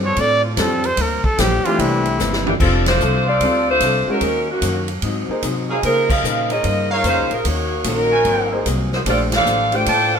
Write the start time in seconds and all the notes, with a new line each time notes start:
Already playing: G2
0.02 F3 C4 D4 A4 C#5
0.16 A2 F3 C4 D4 A4 D5, kick, ride
0.44 F4
0.56 F2 F3 G3 C4 D4 F4 A4, kick, snare, hi-hat pedal, ride
0.84 C5, ride
0.97 D2 G2 F3 A#3 D4, kick, ride
1.01 A#4
1.24 A4, muted upright bass stroke, kick
1.37 A#1 G2 F3 A#3 D4 G4, kick, snare, hi-hat pedal, ride
1.63 E3 A3 C4 D4 F4 G4, ride
1.68 G4
1.78 C2 C3 E3 A#3 D4 E4, kick, ride
2.05 ride
2.19 G1 C3 E3 A#3 D4, snare, hi-hat pedal
2.33 snare
2.47 E3 A#3 D4 G4, floor tom
2.59 F1 F3 G3 C4 D4 F4 A4, kick, crash
2.86 A3 D4 F4 C5, snare, ride
3.00 C2 F3 C4 D4 A4, hi-hat pedal
3.26 C4 D4 F4 A4 C5 D5 F5
3.41 D2 F3 G3 C4 D4 F4 A4, kick, ride
3.70 A3 D4 F4 C5
3.80 C2 F3 C4 D4 A4, kick, hi-hat pedal, ride
4.07 F#3 G#3 C#4 D#4 F#4 A#4, muted upright bass stroke
4.21 D#2 D#3 A#3 C#4 F#4, kick, ride
4.51 D#3 A#3 C#4 F#4
4.61 F#2 D#3 A#3 C#4 F#4, kick, hi-hat pedal, ride
4.88 ride
5.02 G#2 F#3 C4 D#4, kick, ride
5.29 A#3 D#4 G#4 C5, muted upright bass stroke
5.42 G#2 C3 F#3 C4 D#4, kick, hi-hat pedal, ride
5.68 F#3 C4 D#4 G#4 A#4 C#5 F5
5.83 C#3 F3 G#3 A#3 D#4 F4 G#4 A#4 C5, kick, ride
6.10 D#4 G#4 A#4 F5, kick, crash
6.23 A#2 C#3 F3 A#3 D#4, hi-hat pedal
6.50 A#3 D#4 F4 G#4 C#5 D#5, ride
6.63 G2 C#3 F3 A#3 D#4, kick, ride
6.90 A#3 D#4 F4 G#4 A#4 C#5 F5
7.03 F2 C#3 F3 G#3 A#3 C#4 D#4 F4 C5, kick, hi-hat pedal, ride
7.18 C#2
7.31 A#1 G#3 D#4 F4 A#4, ride
7.44 D#2 D#3 A#3 C#4 D#4 F#4 C#5, kick, ride
7.84 A#1 D#3 A#3 C#4 F#4 A#4, kick, hi-hat pedal, ride
7.88 F#3 D#4
8.11 F#4 A#4 C5 G#5
8.25 G#1 G#2 F#3 A#3 C4, kick, ride
8.51 A#3 D#4 G#4 C5
8.65 C2 G#2 F#3 A#3 C4, kick, hi-hat pedal, ride
8.92 A#3 D#4 F#4 C5, snare
9.06 A#1 A3 A#3 C4 D4 F4 G4 A4 C5 D5, kick, ride
9.32 D4 A4 C5 F5, snare, ride
9.45 A1 A#3 D4 A4 C5, hi-hat pedal
9.72 A3 D4 F4 G4 C5 D5 G5, ride
9.86 A2 A#3 D4 A4 C5 A5, kick, ride
10.15 D4 A4 C5 F5